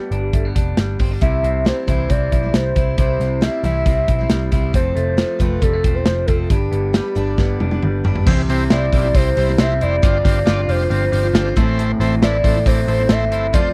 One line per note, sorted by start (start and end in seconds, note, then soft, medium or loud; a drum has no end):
0.00 1.22 G2 medium
0.00 0.78 G3 medium
0.00 0.34 B3 medium
0.00 0.11 D4 medium
0.00 0.51 G4 medium
0.11 0.30 G1 medium
0.11 0.54 D4 medium
0.11 closed hi-hat medium
0.33 0.52 G1 loud
0.33 0.45 A3 medium
0.33 kick medium
0.33 closed hi-hat medium
0.45 1.27 B3 medium
0.55 0.74 F1 medium
0.55 1.00 D4 medium
0.55 kick medium
0.55 closed hi-hat medium
0.77 0.96 G1 loud
0.77 1.65 G3 medium
0.77 snare loud
0.77 closed hi-hat medium
0.99 1.18 G1 medium
0.99 1.11 C4 medium
0.99 kick medium
0.99 open hi-hat medium
1.11 1.22 D4 soft
1.21 1.40 C2 loud
1.21 2.96 C3 medium
1.21 1.64 G3 medium
1.21 1.66 C4 medium
1.21 1.87 E4 medium
1.21 1.66 E4 medium
1.21 1.68 C5 medium
1.21 1.67 E5 loud
1.21 kick medium
1.21 closed hi-hat medium
1.43 1.71 C2 medium
1.43 2.09 C4 medium
1.43 closed hi-hat medium
1.65 1.87 G3 medium
1.65 2.53 G3 medium
1.65 1.87 C4 medium
1.65 1.88 E4 medium
1.65 1.87 C5 medium
1.65 1.88 C5 medium
1.65 snare loud
1.65 closed hi-hat medium
1.87 2.06 C2 medium
1.87 2.10 C3 medium
1.87 2.10 E3 medium
1.87 2.08 G3 medium
1.87 2.09 C4 medium
1.87 2.30 E4 medium
1.87 2.10 E4 medium
1.87 2.11 C5 medium
1.87 kick medium
1.87 closed hi-hat medium
2.09 2.28 C2 medium
2.09 2.43 G3 medium
2.09 3.21 C4 medium
2.09 2.43 C4 medium
2.09 2.43 E4 medium
2.09 2.41 C5 medium
2.09 2.54 D5 medium
2.09 kick medium
2.09 closed hi-hat medium
2.32 2.50 B1 medium
2.32 2.74 E4 medium
2.32 kick medium
2.32 closed hi-hat medium
2.43 2.75 G3 soft
2.43 2.76 C4 soft
2.43 2.77 E4 soft
2.43 2.76 C5 soft
2.54 2.72 C2 medium
2.54 3.42 G3 medium
2.54 2.96 C5 medium
2.54 snare loud
2.54 closed hi-hat medium
2.75 2.94 C2 medium
2.75 2.96 G3 medium
2.75 2.98 C4 medium
2.75 2.97 E4 medium
2.75 2.99 E4 medium
2.75 3.00 C5 medium
2.75 kick medium
2.75 closed hi-hat medium
2.98 3.16 C2 loud
2.98 4.74 C3 medium
2.98 3.40 G3 medium
2.98 3.42 C4 medium
2.98 3.63 E4 medium
2.98 3.42 E4 medium
2.98 3.43 C5 medium
2.98 3.44 C5 medium
2.98 kick medium
2.98 closed hi-hat medium
3.20 3.47 C2 medium
3.20 3.85 C4 medium
3.20 snare soft
3.20 closed hi-hat medium
3.41 3.64 G3 medium
3.41 4.29 G3 medium
3.41 3.64 C4 medium
3.41 3.64 E4 medium
3.41 3.65 C5 medium
3.41 3.64 E5 medium
3.41 snare loud
3.41 closed hi-hat medium
3.64 3.82 C2 medium
3.64 3.86 C3 medium
3.64 3.86 E3 medium
3.64 3.85 G3 medium
3.64 3.86 C4 medium
3.64 4.07 E4 medium
3.64 3.87 E4 medium
3.64 3.87 C5 medium
3.64 4.27 E5 medium
3.64 closed hi-hat medium
3.86 4.04 C2 medium
3.86 4.19 G3 medium
3.86 4.73 C4 medium
3.86 4.20 C4 medium
3.86 4.19 E4 medium
3.86 4.17 C5 medium
3.86 kick medium
3.86 closed hi-hat medium
4.08 4.26 B1 medium
4.08 4.50 E4 medium
4.08 kick medium
4.08 closed hi-hat medium
4.18 4.50 G3 soft
4.18 4.51 C4 medium
4.18 4.52 E4 medium
4.18 4.52 C5 medium
4.30 4.49 C2 loud
4.30 4.79 G3 medium
4.30 snare loud
4.30 closed hi-hat medium
4.51 4.70 C2 medium
4.51 4.73 G3 medium
4.51 4.73 C4 medium
4.51 4.74 E4 medium
4.51 4.75 E4 medium
4.51 4.76 C5 medium
4.51 kick medium
4.51 closed hi-hat medium
4.73 4.92 F1 medium
4.73 6.50 F2 medium
4.73 5.16 A3 medium
4.73 5.39 C4 medium
4.73 5.17 C4 medium
4.73 5.18 F4 medium
4.73 5.19 A4 medium
4.73 4.94 C5 loud
4.73 kick medium
4.73 closed hi-hat medium
4.95 5.23 F1 medium
4.95 5.62 A3 medium
4.95 5.15 C5 loud
4.95 closed hi-hat medium
5.16 6.06 F3 medium
5.16 5.39 A3 medium
5.16 5.39 C4 medium
5.16 5.40 F4 medium
5.16 5.40 A4 medium
5.16 5.41 C5 loud
5.16 snare loud
5.16 closed hi-hat medium
5.39 5.58 F1 medium
5.39 5.62 F3 medium
5.39 5.60 A3 medium
5.39 5.61 C4 medium
5.39 5.83 C4 medium
5.39 5.62 F4 medium
5.39 5.63 A4 medium
5.39 5.63 B4 loud
5.39 kick medium
5.39 closed hi-hat medium
5.61 5.80 F1 loud
5.61 5.73 G3 medium
5.61 5.95 A3 medium
5.61 5.96 C4 medium
5.61 5.95 F4 medium
5.61 5.96 A4 medium
5.61 5.93 A4 medium
5.61 kick medium
5.61 closed hi-hat medium
5.73 6.55 A3 soft
5.84 6.02 E1 medium
5.84 6.28 C4 medium
5.84 kick medium
5.84 closed hi-hat medium
5.94 6.28 C4 soft
5.94 6.29 F4 soft
5.94 6.28 A4 medium
5.94 6.04 C5 medium
6.05 6.24 F1 loud
6.05 6.55 F3 medium
6.05 6.28 C5 loud
6.05 snare loud
6.05 closed hi-hat medium
6.26 6.46 F1 medium
6.26 6.49 A3 medium
6.26 6.50 C4 medium
6.26 6.51 F4 medium
6.26 6.43 A4 medium
6.26 kick medium
6.26 closed hi-hat medium
6.31 6.52 A4 medium
6.43 6.51 A4 medium
6.50 6.68 G1 medium
6.50 8.26 G2 medium
6.50 6.93 G3 medium
6.50 6.94 D4 medium
6.50 7.16 D4 medium
6.50 7.82 G4 medium
6.50 6.96 G4 medium
6.50 6.96 B4 medium
6.50 kick medium
6.50 closed hi-hat medium
6.71 6.99 G1 medium
6.71 7.38 B3 medium
6.71 closed hi-hat medium
6.93 7.14 G3 medium
6.93 7.83 G3 medium
6.93 7.14 D4 medium
6.93 7.15 G4 medium
6.93 7.16 B4 medium
6.93 snare loud
6.93 closed hi-hat medium
7.15 7.34 G1 medium
7.15 7.36 G3 medium
7.15 7.38 D4 medium
7.15 7.60 D4 medium
7.15 7.38 G4 medium
7.15 7.39 B4 medium
7.15 closed hi-hat medium
7.38 7.56 G1 loud
7.38 7.71 G3 medium
7.38 8.31 B3 medium
7.38 7.72 D4 medium
7.38 7.71 G4 medium
7.38 7.70 B4 medium
7.38 kick medium
7.38 snare medium
7.60 7.79 F1 medium
7.60 8.04 D4 medium
7.60 high tom medium
7.71 8.04 D4 soft
7.71 8.05 G4 medium
7.71 8.04 B4 medium
7.71 high tom medium
7.83 8.01 G1 loud
7.83 8.93 G3 medium
7.83 mid tom medium
8.04 8.23 G1 medium
8.04 8.26 G3 medium
8.04 8.27 D4 medium
8.04 8.31 D4 medium
8.04 8.28 G4 medium
8.04 8.28 B4 medium
8.04 floor tom medium
8.16 floor tom medium
8.26 8.44 C2 loud
8.26 8.71 C3 loud
8.26 10.03 C3 medium
8.26 8.71 E3 medium
8.26 8.70 G3 loud
8.26 8.42 C4 loud
8.26 8.71 C4 loud
8.26 8.42 E4 loud
8.26 8.71 E4 loud
8.26 8.42 G4 loud
8.26 8.42 C5 loud
8.26 8.74 C5 loud
8.26 kick loud
8.26 crash loud
8.48 8.67 C2 medium
8.48 8.64 C4 loud
8.48 9.15 C4 medium
8.48 8.64 E4 loud
8.48 8.64 G4 loud
8.48 8.64 C5 loud
8.48 snare soft
8.48 hi-hat pedal medium
8.48 open hi-hat medium
8.70 8.89 C2 loud
8.70 9.04 G3 medium
8.70 8.86 C4 medium
8.70 9.04 C4 medium
8.70 8.86 E4 medium
8.70 9.80 E4 medium
8.70 9.03 E4 medium
8.70 8.86 G4 medium
8.70 8.86 C5 medium
8.70 9.02 C5 medium
8.70 9.17 D5 medium
8.70 snare loud
8.70 hi-hat pedal medium
8.70 open hi-hat medium
8.92 9.10 B1 medium
8.92 9.37 G3 medium
8.92 9.08 C4 medium
8.92 9.08 E4 medium
8.92 9.08 G4 medium
8.92 9.08 D5 medium
8.92 kick medium
8.92 hi-hat pedal medium
8.92 open hi-hat medium
9.03 9.49 G3 soft
9.03 9.49 C4 soft
9.03 9.47 E4 soft
9.03 9.46 C5 medium
9.15 9.33 C2 loud
9.15 9.30 C4 medium
9.15 9.59 C4 medium
9.15 9.30 E4 medium
9.15 9.30 G4 medium
9.15 9.61 C5 loud
9.15 9.30 C5 medium
9.15 kick medium
9.15 hi-hat pedal medium
9.15 open hi-hat medium
9.37 9.55 C2 medium
9.37 10.07 G3 medium
9.37 9.52 C4 medium
9.37 9.52 E4 medium
9.37 9.52 G4 medium
9.37 9.52 C5 medium
9.37 hi-hat pedal medium
9.37 open hi-hat medium
9.47 9.71 G3 soft
9.47 9.70 C4 soft
9.47 9.69 E4 medium
9.47 9.67 C5 medium
9.58 9.83 C2 loud
9.58 9.74 C4 loud
9.58 10.25 C4 medium
9.58 9.74 E4 medium
9.58 9.74 G4 loud
9.58 9.74 C5 loud
9.58 9.84 E5 loud
9.58 snare loud
9.58 hi-hat pedal medium
9.58 open hi-hat medium
9.68 10.01 G3 soft
9.68 10.03 C4 soft
9.68 10.03 E4 medium
9.68 10.02 C5 soft
9.81 9.99 F1 medium
9.81 9.96 C4 medium
9.81 10.07 E4 medium
9.81 9.96 E4 medium
9.81 9.96 G4 medium
9.81 9.96 C5 medium
9.81 10.71 D5 loud
9.81 hi-hat pedal medium
9.81 open hi-hat medium
10.02 10.21 G1 loud
10.02 11.56 G2 medium
10.02 10.44 G3 medium
10.02 10.18 D4 loud
10.02 10.45 D4 medium
10.02 10.18 F4 medium
10.02 10.47 F4 loud
10.02 10.18 G4 medium
10.02 10.18 C5 loud
10.02 10.48 C5 medium
10.02 kick loud
10.02 hi-hat pedal medium
10.02 open hi-hat medium
10.24 10.43 G1 medium
10.24 10.91 C4 medium
10.24 10.40 D4 loud
10.24 10.40 F4 medium
10.24 10.40 G4 medium
10.24 10.40 C5 loud
10.24 kick loud
10.24 snare soft
10.24 hi-hat pedal medium
10.24 open hi-hat medium
10.45 10.65 G1 loud
10.45 10.79 G3 medium
10.45 10.61 D4 medium
10.45 10.80 D4 medium
10.45 10.61 F4 medium
10.45 11.61 F4 medium
10.45 10.80 F4 medium
10.45 10.61 G4 medium
10.45 10.78 C5 medium
10.45 10.61 D5 loud
10.45 snare loud
10.45 hi-hat pedal medium
10.45 open hi-hat medium
10.68 10.86 F1 loud
10.68 11.12 F3 medium
10.68 10.84 D4 medium
10.68 10.84 F4 medium
10.68 10.84 G4 medium
10.68 10.84 C5 medium
10.68 10.91 C5 medium
10.68 hi-hat pedal medium
10.68 open hi-hat medium
10.79 11.25 D4 soft
10.79 11.23 F4 medium
10.79 11.23 C5 medium
10.90 11.08 G1 loud
10.90 11.35 C4 medium
10.90 11.05 D4 medium
10.90 11.05 F4 medium
10.90 11.05 G4 medium
10.90 11.05 C5 medium
10.90 11.53 C5 medium
10.90 hi-hat pedal medium
10.90 open hi-hat medium
11.12 11.30 G1 medium
11.12 11.61 F3 medium
11.12 11.27 D4 medium
11.12 11.27 F4 medium
11.12 11.27 G4 medium
11.12 11.28 C5 medium
11.12 hi-hat pedal medium
11.12 open hi-hat medium
11.23 11.47 D4 soft
11.23 11.45 F4 medium
11.23 11.43 C5 medium
11.33 11.52 G1 loud
11.33 12.01 C4 medium
11.33 11.49 D4 loud
11.33 11.49 F4 medium
11.33 11.49 G4 medium
11.33 11.49 A4 loud
11.33 snare loud
11.33 hi-hat pedal medium
11.33 open hi-hat loud
11.45 11.57 D4 medium
11.45 11.57 F4 medium
11.45 11.56 C5 medium
11.56 11.92 A1 loud
11.56 12.22 A2 medium
11.56 11.78 A2 medium
11.56 12.22 E3 loud
11.56 12.22 A3 medium
11.56 11.92 C4 loud
11.56 12.23 C4 loud
11.56 11.92 E4 medium
11.56 12.23 E4 loud
11.56 11.92 A4 medium
11.56 11.92 C5 loud
11.56 12.25 C5 medium
11.56 kick loud
11.56 hi-hat pedal medium
11.56 open hi-hat medium
11.79 13.54 A2 medium
11.79 hi-hat pedal medium
11.79 open hi-hat loud
12.00 12.18 A1 loud
12.00 12.15 C4 loud
12.00 12.66 C4 medium
12.00 12.15 E4 loud
12.00 12.15 A4 loud
12.00 12.15 C5 loud
12.00 snare soft
12.00 hi-hat pedal medium
12.00 open hi-hat medium
12.21 12.40 A1 loud
12.21 12.55 A3 medium
12.21 12.37 C4 medium
12.21 12.56 C4 medium
12.21 12.37 E4 medium
12.21 13.30 E4 medium
12.21 12.55 E4 medium
12.21 12.37 A4 medium
12.21 12.37 B4 medium
12.21 12.53 C5 medium
12.21 12.68 D5 loud
12.21 snare loud
12.21 hi-hat pedal medium
12.21 open hi-hat medium
12.44 12.62 A1 medium
12.44 12.88 A3 medium
12.44 12.59 C4 medium
12.44 12.59 E4 medium
12.44 12.59 A4 medium
12.44 12.59 C5 medium
12.44 kick medium
12.44 hi-hat pedal medium
12.44 open hi-hat medium
12.54 13.01 A3 soft
12.54 13.00 C4 soft
12.54 12.98 E4 medium
12.54 12.98 C5 medium
12.66 12.84 A1 loud
12.66 12.81 C4 medium
12.66 13.10 C4 medium
12.66 12.81 E4 medium
12.66 12.81 A4 medium
12.66 13.13 C5 loud
12.66 12.81 D5 medium
12.66 kick medium
12.66 hi-hat pedal medium
12.66 open hi-hat medium
12.87 13.06 A1 medium
12.87 13.58 A3 medium
12.87 13.03 C4 medium
12.87 13.03 E4 medium
12.87 13.03 A4 medium
12.87 13.03 C5 medium
12.87 hi-hat pedal medium
12.87 open hi-hat medium
12.98 13.22 A3 soft
12.98 13.21 C4 soft
12.98 13.20 E4 medium
12.98 13.19 C5 medium
13.09 13.31 A1 loud
13.09 13.25 C4 loud
13.09 13.73 C4 medium
13.09 13.25 E4 medium
13.09 13.25 A4 medium
13.09 13.25 C5 loud
13.09 13.54 E5 loud
13.09 snare loud
13.09 hi-hat pedal medium
13.09 open hi-hat loud
13.20 13.52 A3 soft
13.20 13.53 C4 soft
13.20 13.54 E4 soft
13.20 13.53 C5 medium
13.31 13.54 G1 loud
13.31 13.47 C4 medium
13.31 13.58 E4 medium
13.31 13.47 E4 medium
13.31 13.47 A4 medium
13.31 13.47 C5 medium
13.31 hi-hat pedal medium
13.31 open hi-hat medium
13.53 13.72 F1 loud
13.53 13.73 F3 medium
13.53 13.73 A3 medium
13.53 13.69 C4 loud
13.53 13.73 C4 medium
13.53 13.69 F4 medium
13.53 13.73 F4 medium
13.53 13.69 A4 medium
13.53 13.69 C5 loud
13.53 13.73 C5 loud
13.53 13.73 D5 loud
13.53 kick loud
13.53 hi-hat pedal medium
13.53 open hi-hat medium